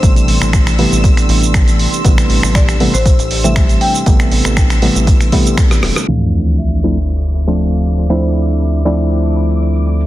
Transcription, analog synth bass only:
X:1
M:4/4
L:1/16
Q:"Swing 16ths" 1/4=119
K:Dm
V:1 name="Analog synth bass" clef=bass
A,,, z A,,, A,,,4 A,,, z2 A,,,4- A,,, z | A,,, z A,,, A,,,4 A,,, z A,,,4- A,,, z2 | A,,, z A,,, A,,,4 A,,, z6 E,,, z | D,,16- |
D,,16 |]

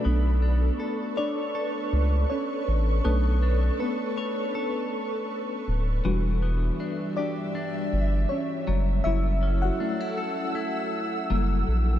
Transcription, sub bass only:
X:1
M:4/4
L:1/8
Q:"Swing 16ths" 1/4=80
K:Bm
V:1 name="Sub bass" clef=bass
B,,,2 z3 C,, z A,,, | B,,,2 z4 z D,,, | E,,,2 z3 G,,, z F,,, | F,,,2 z4 F,,, ^A,,, |]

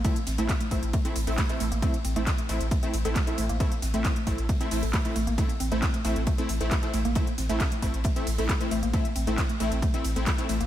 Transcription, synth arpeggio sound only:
X:1
M:4/4
L:1/16
Q:1/4=135
K:Am
V:1 name="Synth arpeggio sound"
A, z C A, z A, A, z A, C z A A, z A, _B, | A, z C A, z A, A, z A, C z A A, z A, _B, | A, z C A, z A, A, z A, C z A A, z A, _B, | A, z C A, z A, A, z A, C z A A, z A, _B, |
A, z C A, z A, A, z A, C z A A, z A, _B, | A, z C A, z A, A, z A, C z A A, z A, _B, |]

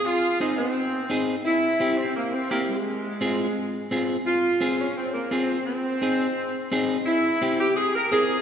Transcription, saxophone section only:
X:1
M:4/4
L:1/8
Q:1/4=171
K:Fm
V:1 name="Saxophone section"
F2 E C4 z | =E3 C B, C B, A,- | A,6 z2 | F3 D C B, C2 |
C6- C z | =E3 G A B A2 |]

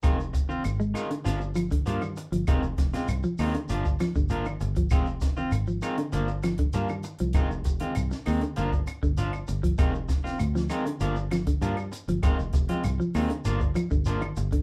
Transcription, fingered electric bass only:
X:1
M:4/4
L:1/16
Q:1/4=98
K:Fdor
V:1 name="Fingered electric bass" clef=bass
F,,,4 A,,,2 z2 G,,,4 G,,2 z G,,, | F,,, F,,, F,,, z C,, z E,, z G,,,2 z G,,,3 G,,,2 | F,,,4 A,,,2 z2 G,,,4 G,,2 z C,, | F,,, F,,, F,,, z C,, z E,, z G,,,2 z G,,,3 G,,,2 |
F,,,4 D,,2 z2 G,,,4 G,,2 z G,,, | F,,, F,,, F,,, z C,, z E,, z G,,,2 z G,,,3 G,,,2 |]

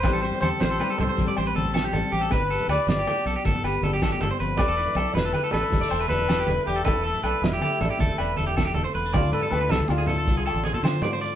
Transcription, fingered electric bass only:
X:1
M:12/8
L:1/16
Q:3/8=105
K:Ephr
V:1 name="Fingered electric bass" clef=bass
A,,, A,,,2 z E,, z A,,,2 z2 C,, z A,,, z A,,,2 A,,,4 A,,, z A,,,2 | G,,, G,,,2 z D,, z G,,,2 z2 B,,, z G,,, z G,,,2 G,,,4 G,,, z G,,,2 | E,,, E,,,2 z B,,, z E,,,2 z2 A,,, z E,,, z E,,,2 E,,,4 E,,, z E,,,2 | E,,, E,,,2 z B,,, z E,,,2 z2 A,,, z E,,, z E,,,2 E,,,4 E,,, z E,,,2 |
[K:Ddor] D,,2 ^G,,2 D,,2 C,, D,, D,,4 C,,3 A,,,2 C, D,2 G,,4 |]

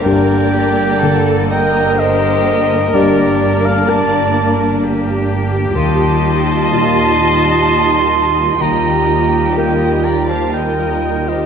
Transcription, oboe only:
X:1
M:3/4
L:1/16
Q:1/4=63
K:Gm
V:1 name="Oboe"
g6 g2 e4 | d3 f a4 z4 | c'12 | b4 g2 b a g3 e |]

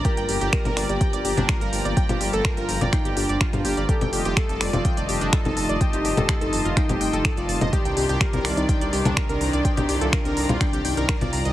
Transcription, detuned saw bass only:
X:1
M:4/4
L:1/16
Q:1/4=125
K:Gm
V:1 name="Detuned saw bass" clef=bass
z G,,, G,,, G,,, z G,,, G,,, G,,, z G,,, G,,, G,,, z G,,, G,,, G,,, | z G,,, G,,, G,,, z G,,, G,,, G,,, z G,,, G,,, G,,, z G,, G,,, G,,, | z F,,, F,,, F,,, z F,,, F,,, F,,, z F,,, F,,, F,,, z F,,, F,,, F,,, | z F,,, F,,, F,,, z F,,, F,,, F,,, z F,,, F,,, F,,, z F,,, F,,, F,,, |
z C,, C,, C,, z C,, C,, C,, z C,, C,, C,, z C,, C,, C,, | z C,, C,, C,, z C,, C,, C,, z C,, C,, C,, z C,, C,, C,, |]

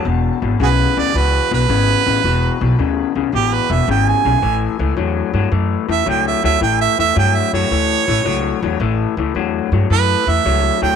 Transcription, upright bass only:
X:1
M:4/4
L:1/8
Q:"Swing" 1/4=110
K:A
V:1 name="Upright bass" clef=bass
E,,, G,,, B,,, D,, C,, B,,, G,,, A,,, | E,,, B,,, D,, C,, A,,, E,,, G,,, B,,, | A,,, C,, E,, =G,, F,, E,, C,, D,, | A,,, E,, =G,, F,, D,, A,,, C,, E,, |
A,,, C,, E,, =G,, F,, E,, C,, D,, |]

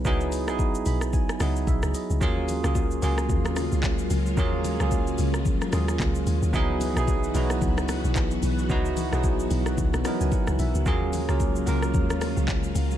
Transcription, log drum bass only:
X:1
M:4/4
L:1/16
Q:"Swing 16ths" 1/4=111
K:Dbdor
V:1 name="Log drum bass" clef=bass
D,,3 C,,3 C,,3 z D,,2 C,, D,, z D,, | E,,3 D,,3 D,,2 E,,3 D,,3 D,,2 | E,,3 D,,3 D,,3 z E,,2 D,,2 E,, E,, | D,,3 C,,3 C,,2 D,,3 C,,3 C,,2 |
D,,3 C,,3 C,,2 D,, C,, z D,, z D,, C,, D,, | E,,3 D,,3 D,,2 E,,3 D,,3 D,,2 |]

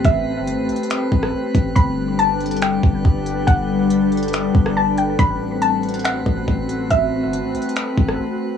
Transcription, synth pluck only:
X:1
M:4/4
L:1/8
Q:1/4=140
K:Ador
V:1 name="Synth pluck"
e2 z6 | b2 a2 g4 | f2 z4 a g | b2 a2 f4 |
e2 z6 |]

